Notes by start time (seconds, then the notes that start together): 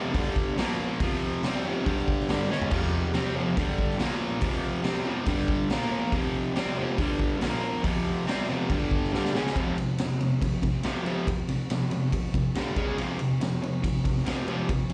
Already playing: F2 C3 F3
0.13 G2 D3 G3, kick, open hi-hat
0.36 kick
0.57 A#2 F3 A#3, snare, open hi-hat
1.00 F2 C3 F3, kick, open hi-hat
1.43 C3 G3 C4, snare, open hi-hat
1.55 snare
1.64 F2 C3 F3
1.85 G2 D3 G3, kick, open hi-hat
2.08 kick
2.20 snare
2.28 G2 D3 G3, snare, open hi-hat
2.50 C#3 G#3 C#4, snare
2.62 floor tom
2.70 F2 C3 F3, kick, crash
3.14 C3 G3 C4, snare, open hi-hat
3.35 F2 C3 F3
3.56 G2 D3 G3, kick, open hi-hat
3.78 kick
3.90 snare
3.98 A#2 F3 A#3, snare, open hi-hat
4.41 F2 C3 F3, kick, open hi-hat
4.83 C3 G3 C4, snare, open hi-hat
5.05 F2 C3 F3
5.26 G2 D3 G3, kick, open hi-hat
5.48 kick
5.70 A#2 F3 A#3, snare, open hi-hat
6.12 F2 C3 F3, kick, open hi-hat
6.54 C3 G3 C4, snare, open hi-hat
6.78 F2 C3 F3
6.98 G2 D3 G3, kick, open hi-hat
7.19 kick
7.41 A#2 F3 A#3, snare, open hi-hat
7.83 F2 C3 F3, kick, open hi-hat
8.26 C3 G3 C4, snare, open hi-hat
8.40 snare
8.47 F2 C3 F3
8.70 G2 D3 G3, kick, open hi-hat
8.91 kick
9.04 snare
9.12 G2 D3 G3, snare
9.25 snare
9.34 C#3 G#3 C#4, snare
9.46 snare
9.54 F2 C3 F3, kick, ride
9.77 F2 C3, ride
9.98 F2 C3, snare, ride
10.21 F2 C3, ride
10.42 F2 C3, kick, ride
10.62 F2 C3, kick, snare, ride
10.83 F2 C3 F3, snare, ride
11.05 F2 C3 F3, ride
11.27 F2 C3, kick, ride
11.49 F2 C3, ride
11.70 F2 C3, snare, ride
11.91 F2 C3, ride
12.12 F2 C3, kick, ride
12.34 F2 C3, kick, ride
12.55 G2 D3 G3, snare, ride
12.76 C#3 G#3 C#4, kick, ride
12.98 F2 C3 F3, ride
13.19 F2 C3, ride
13.41 F2 C3, snare, ride
13.62 F2 C3, ride
13.83 F2 C3, kick, ride
14.04 F2 C3, kick, snare, ride
14.18 snare
14.25 F2 C3 F3, snare, ride
14.48 F2 C3 F3, ride
14.69 F2 C3, kick, ride
14.90 ride